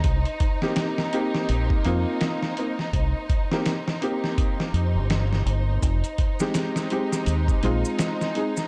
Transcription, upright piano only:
X:1
M:4/4
L:1/16
Q:"Swing 16ths" 1/4=83
K:Cphr
V:1 name="Upright piano"
z3 [B,CEG]3 [B,CEG]4 [B,CEF]4 [B,CEB] z | z3 [B,CEG] z2 [B,CEG]8- [B,CEG]2 | z3 [A,CEG]3 [A,CEG]4 [A,CEF]4 [A,CEA] z |]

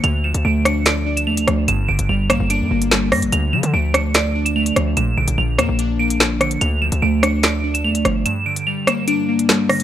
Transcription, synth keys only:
X:1
M:4/4
L:1/8
Q:1/4=146
K:Dm
V:1 name="Synth keys" clef=bass
D, F, A, D d D A, F, | G,, D, G, B, D B, G, D, | D, F, A, D d D A, F, | B,, D, F, B, D B, F, D, |
D, F, A, D d D A, F, | G,, D, G, B, D B, G, D, |]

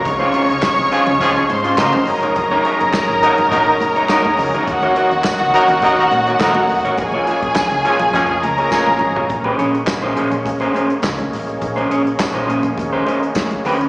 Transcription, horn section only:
X:1
M:4/4
L:1/16
Q:1/4=104
K:Bbm
V:1 name="Horn section"
z6 [F,DA] z [F,DA] [F,DA] z2 [G,EB]3 z | z6 [G,EB] z [G,EB] [G,EB] z2 [G,EB]3 z | z6 [G,EB] z [G,EB] [G,EB] z2 [G,EB]3 z | z6 [F,DA] z [F,DA] [F,DA] z2 [F,DA]3 z |
z16 | z16 |]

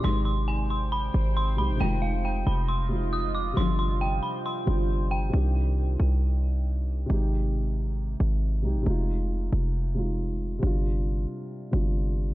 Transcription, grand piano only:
X:1
M:4/4
L:1/8
Q:1/4=136
K:Cm
V:1 name="Grand piano"
[C,A,EG]6- [C,A,EG] [C,A,EG] | [C,A,EF]4- [C,A,EF] [C,A,EF]3 | [C,G,DF]4- [C,G,DF] [C,G,DF]3 | [C,E,DG]8 |
[C,A,EG]6- [C,A,EG] [C,A,EG] | [C,A,EF]4- [C,A,EF] [C,A,EF]3 | [C,G,DF]4- [C,G,DF] [C,G,DF]3 |]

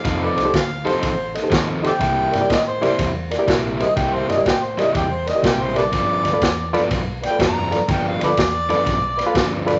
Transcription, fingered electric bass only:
X:1
M:4/4
L:1/8
Q:"Swing" 1/4=123
K:Cmix
V:1 name="Fingered electric bass" clef=bass
F,,, C,, D,,2 A,,,2 _E,,2 | C,, G,, A,,2 E,,2 B,,,2 | C,, G,, A,,2 E,,2 B,,,2 | G,,, D,, E,,2 =B,,,2 F,,,2 |
G,,, D,, E,,2 =B,,,2 D,,2 |]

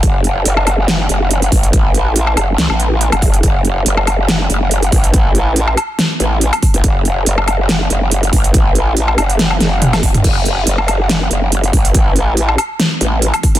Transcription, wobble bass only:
X:1
M:4/4
L:1/16
Q:"Swing 16ths" 1/4=141
K:F#m
V:1 name="Wobble bass" clef=bass
F,,,4 F,,,6 F,,,4 A,,,2- | A,,,6 F,,,2 C,, A,,,4 F,,,3 | F,,,4 F,,,6 F,,,4 A,,,2- | A,,,6 z4 A,,,3 z2 A,,, |
F,,,4 F,,,6 F,,,4 A,,,2- | A,,,6 F,,,4 F,,,4 E,,,2 | F,,,4 F,,,6 F,,,4 A,,,2- | A,,,6 z4 A,,,3 z2 A,,, |]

